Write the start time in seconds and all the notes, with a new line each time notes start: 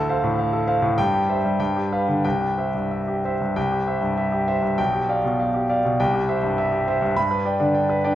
Already playing: D2 A4 A5
0.09 C5 F5
0.23 A2
0.38 F5
0.53 A4
0.67 C5 F5
0.82 A2
0.98 G2 G5
1.13 G4
1.29 C5 E5
1.45 G3
1.60 G2 G5
1.76 G4
1.92 B4 F5
2.08 D3
2.25 C2 G5
2.42 G4
2.58 C5 E5
2.75 G2
2.91 E5
3.08 G4
3.25 C5 E5
3.41 G2
3.56 C2 G5
3.72 G4
3.87 C5 E5
4.02 G2
4.18 E5
4.32 G4
4.48 C5 E5
4.63 G2
4.78 B1 G5
4.94 G4
5.09 D5 F5
5.25 B2
5.40 F5
5.54 G4
5.69 D5 F5
5.85 B2
6.00 C2 G5
6.14 G4
6.29 C5 E5
6.43 G2
6.58 E5
6.72 G4
6.87 C5 E5
7.02 G2
7.16 G2 B5
7.31 B4
7.45 D5 G5
7.60 D3 D4
7.75 G5
7.90 B4
8.04 D4 D5 G5